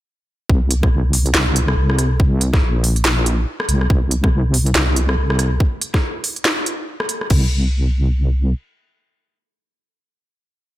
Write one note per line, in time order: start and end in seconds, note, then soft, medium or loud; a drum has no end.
0.49 1.33 C2 loud
0.49 kick loud
0.71 closed hi-hat medium
0.83 kick loud
0.83 cross-stick soft
1.13 open hi-hat medium
1.26 closed hi-hat soft
1.34 1.76 C2 medium
1.34 snare loud
1.34 clap loud
1.56 closed hi-hat medium
1.68 cross-stick medium
1.77 2.61 C2 loud
1.90 cross-stick medium
1.99 cross-stick medium
1.99 closed hi-hat medium
2.20 kick loud
2.41 closed hi-hat medium
2.54 kick loud
2.54 cross-stick medium
2.54 snare soft
2.62 3.46 A#1 loud
2.84 open hi-hat medium
2.96 closed hi-hat soft
3.05 snare loud
3.05 clap loud
3.26 closed hi-hat medium
3.60 cross-stick medium
3.69 3.89 C2 loud
3.69 closed hi-hat medium
3.81 cross-stick medium
3.90 4.74 C2 medium
3.90 kick loud
4.11 closed hi-hat medium
4.24 kick loud
4.24 cross-stick medium
4.54 open hi-hat medium
4.66 closed hi-hat soft
4.75 5.16 C2 loud
4.75 snare loud
4.75 clap medium
4.96 closed hi-hat medium
5.09 cross-stick medium
5.18 5.59 C2 loud
5.30 cross-stick medium
5.39 cross-stick medium
5.39 closed hi-hat medium
5.60 kick loud
5.81 closed hi-hat medium
5.94 kick loud
5.94 cross-stick medium
5.94 snare soft
6.24 open hi-hat medium
6.36 closed hi-hat soft
6.45 snare loud
6.45 clap medium
6.66 closed hi-hat medium
7.00 cross-stick medium
7.09 closed hi-hat medium
7.21 cross-stick medium
7.30 8.54 C2 medium
7.30 kick loud
7.30 crash medium